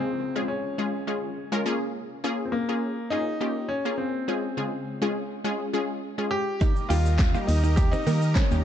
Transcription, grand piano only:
0, 0, Header, 1, 2, 480
1, 0, Start_track
1, 0, Tempo, 582524
1, 1608, Time_signature, 4, 2, 24, 8
1, 7120, End_track
2, 0, Start_track
2, 0, Title_t, "Grand piano"
2, 0, Program_c, 0, 0
2, 0, Note_on_c, 0, 60, 96
2, 370, Note_off_c, 0, 60, 0
2, 397, Note_on_c, 0, 61, 90
2, 1329, Note_off_c, 0, 61, 0
2, 2021, Note_on_c, 0, 60, 66
2, 2076, Note_on_c, 0, 58, 96
2, 2082, Note_off_c, 0, 60, 0
2, 2529, Note_off_c, 0, 58, 0
2, 2558, Note_on_c, 0, 63, 117
2, 3037, Note_on_c, 0, 61, 102
2, 3057, Note_off_c, 0, 63, 0
2, 3265, Note_off_c, 0, 61, 0
2, 3276, Note_on_c, 0, 60, 91
2, 4209, Note_off_c, 0, 60, 0
2, 5197, Note_on_c, 0, 67, 127
2, 5650, Note_off_c, 0, 67, 0
2, 5674, Note_on_c, 0, 65, 103
2, 6156, Note_on_c, 0, 63, 97
2, 6176, Note_off_c, 0, 65, 0
2, 6396, Note_on_c, 0, 67, 116
2, 6409, Note_off_c, 0, 63, 0
2, 6522, Note_on_c, 0, 63, 114
2, 6533, Note_off_c, 0, 67, 0
2, 6856, Note_off_c, 0, 63, 0
2, 6875, Note_on_c, 0, 61, 89
2, 7120, Note_off_c, 0, 61, 0
2, 7120, End_track
0, 0, End_of_file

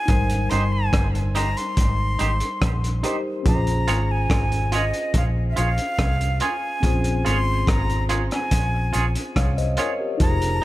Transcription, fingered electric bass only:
0, 0, Header, 1, 2, 480
1, 0, Start_track
1, 0, Tempo, 842933
1, 48, Time_signature, 4, 2, 24, 8
1, 6059, End_track
2, 0, Start_track
2, 0, Title_t, "Fingered electric bass"
2, 0, Program_c, 0, 33
2, 53, Note_on_c, 0, 32, 84
2, 278, Note_off_c, 0, 32, 0
2, 295, Note_on_c, 0, 31, 98
2, 519, Note_off_c, 0, 31, 0
2, 532, Note_on_c, 0, 31, 86
2, 874, Note_off_c, 0, 31, 0
2, 1012, Note_on_c, 0, 32, 92
2, 1238, Note_off_c, 0, 32, 0
2, 1256, Note_on_c, 0, 32, 76
2, 1368, Note_off_c, 0, 32, 0
2, 1493, Note_on_c, 0, 34, 87
2, 1718, Note_off_c, 0, 34, 0
2, 1971, Note_on_c, 0, 34, 97
2, 2197, Note_off_c, 0, 34, 0
2, 2216, Note_on_c, 0, 32, 88
2, 2440, Note_off_c, 0, 32, 0
2, 2453, Note_on_c, 0, 32, 92
2, 2794, Note_off_c, 0, 32, 0
2, 2932, Note_on_c, 0, 34, 106
2, 3157, Note_off_c, 0, 34, 0
2, 3177, Note_on_c, 0, 34, 78
2, 3289, Note_off_c, 0, 34, 0
2, 3414, Note_on_c, 0, 36, 94
2, 3639, Note_off_c, 0, 36, 0
2, 3894, Note_on_c, 0, 34, 101
2, 4119, Note_off_c, 0, 34, 0
2, 4138, Note_on_c, 0, 32, 90
2, 4361, Note_off_c, 0, 32, 0
2, 4373, Note_on_c, 0, 32, 87
2, 4715, Note_off_c, 0, 32, 0
2, 4853, Note_on_c, 0, 34, 100
2, 5078, Note_off_c, 0, 34, 0
2, 5098, Note_on_c, 0, 34, 76
2, 5209, Note_off_c, 0, 34, 0
2, 5334, Note_on_c, 0, 36, 81
2, 5559, Note_off_c, 0, 36, 0
2, 5812, Note_on_c, 0, 29, 98
2, 6038, Note_off_c, 0, 29, 0
2, 6059, End_track
0, 0, End_of_file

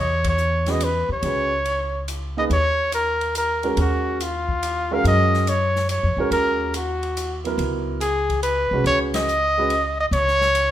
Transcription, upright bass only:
0, 0, Header, 1, 2, 480
1, 0, Start_track
1, 0, Tempo, 423729
1, 1398, Time_signature, 3, 2, 24, 8
1, 12133, End_track
2, 0, Start_track
2, 0, Title_t, "Upright bass"
2, 0, Program_c, 0, 32
2, 0, Note_on_c, 0, 40, 80
2, 1191, Note_off_c, 0, 40, 0
2, 1230, Note_on_c, 0, 39, 63
2, 1381, Note_off_c, 0, 39, 0
2, 1388, Note_on_c, 0, 37, 77
2, 2789, Note_off_c, 0, 37, 0
2, 2829, Note_on_c, 0, 39, 73
2, 4229, Note_off_c, 0, 39, 0
2, 4271, Note_on_c, 0, 39, 80
2, 5669, Note_off_c, 0, 39, 0
2, 5710, Note_on_c, 0, 42, 81
2, 6788, Note_off_c, 0, 42, 0
2, 6834, Note_on_c, 0, 41, 57
2, 6979, Note_off_c, 0, 41, 0
2, 6986, Note_on_c, 0, 40, 65
2, 7140, Note_off_c, 0, 40, 0
2, 7147, Note_on_c, 0, 39, 75
2, 8546, Note_off_c, 0, 39, 0
2, 8584, Note_on_c, 0, 37, 79
2, 9828, Note_off_c, 0, 37, 0
2, 9868, Note_on_c, 0, 36, 63
2, 10011, Note_off_c, 0, 36, 0
2, 10017, Note_on_c, 0, 37, 74
2, 11422, Note_off_c, 0, 37, 0
2, 11456, Note_on_c, 0, 37, 75
2, 12133, Note_off_c, 0, 37, 0
2, 12133, End_track
0, 0, End_of_file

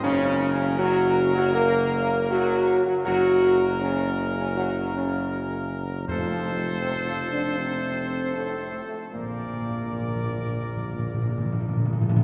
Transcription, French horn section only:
0, 0, Header, 1, 2, 480
1, 0, Start_track
1, 0, Tempo, 755668
1, 24, Time_signature, 4, 2, 24, 8
1, 4824, Tempo, 780234
1, 7681, End_track
2, 0, Start_track
2, 0, Title_t, "French horn section"
2, 0, Program_c, 0, 60
2, 23, Note_on_c, 0, 61, 127
2, 477, Note_off_c, 0, 61, 0
2, 499, Note_on_c, 0, 66, 117
2, 834, Note_off_c, 0, 66, 0
2, 871, Note_on_c, 0, 66, 117
2, 978, Note_off_c, 0, 66, 0
2, 980, Note_on_c, 0, 70, 113
2, 1435, Note_off_c, 0, 70, 0
2, 1463, Note_on_c, 0, 66, 119
2, 1796, Note_off_c, 0, 66, 0
2, 1824, Note_on_c, 0, 66, 105
2, 1877, Note_off_c, 0, 66, 0
2, 1936, Note_on_c, 0, 66, 122
2, 2311, Note_off_c, 0, 66, 0
2, 2419, Note_on_c, 0, 61, 104
2, 2756, Note_off_c, 0, 61, 0
2, 2788, Note_on_c, 0, 61, 102
2, 2895, Note_on_c, 0, 66, 100
2, 2898, Note_off_c, 0, 61, 0
2, 3123, Note_off_c, 0, 66, 0
2, 3137, Note_on_c, 0, 61, 92
2, 3594, Note_off_c, 0, 61, 0
2, 3849, Note_on_c, 0, 53, 104
2, 4309, Note_off_c, 0, 53, 0
2, 4328, Note_on_c, 0, 60, 92
2, 4403, Note_off_c, 0, 60, 0
2, 4481, Note_on_c, 0, 65, 88
2, 4641, Note_off_c, 0, 65, 0
2, 4644, Note_on_c, 0, 62, 85
2, 4804, Note_off_c, 0, 62, 0
2, 4806, Note_on_c, 0, 60, 80
2, 5276, Note_on_c, 0, 57, 86
2, 5289, Note_off_c, 0, 60, 0
2, 5430, Note_off_c, 0, 57, 0
2, 5437, Note_on_c, 0, 57, 73
2, 5514, Note_off_c, 0, 57, 0
2, 5608, Note_on_c, 0, 57, 72
2, 5761, Note_off_c, 0, 57, 0
2, 5767, Note_on_c, 0, 58, 77
2, 7189, Note_off_c, 0, 58, 0
2, 7681, End_track
0, 0, End_of_file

